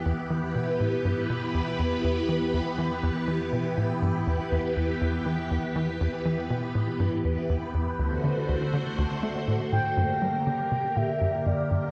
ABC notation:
X:1
M:4/4
L:1/16
Q:1/4=121
K:Em
V:1 name="Analog synth lead"
z16 | z16 | z16 | z16 |
z12 z2 g2- | [K:Gdor] g8 e4 d4 |]
V:2 name="String machine"
[E,B,GB]16- | [E,B,GB]16- | [E,B,GB]16- | [E,B,GB]16 |
[D,A,Fc]16 | [K:Gdor] [D,B,GB]16 |]
V:3 name="Analog synth bass" clef=bass
E,,2 E, z B,,2 A,, z G,,2 B,, z E,,2 E,,2 | E,,2 E, z E,,2 E, z E,,2 E, z B,,2 A,, z | G,,2 E,, z E,,2 E,,2 E,,2 E, z E,,2 E, z | E,,2 E, z B,,2 A,, z G,,2 E,, z E,,2 E,,2 |
D,,2 D, z D,,2 D, z D,,2 A, z A,, z A,,2 | [K:Gdor] G,,2 G, z D,2 C, z B,,2 G,, z G,,2 G,,2 |]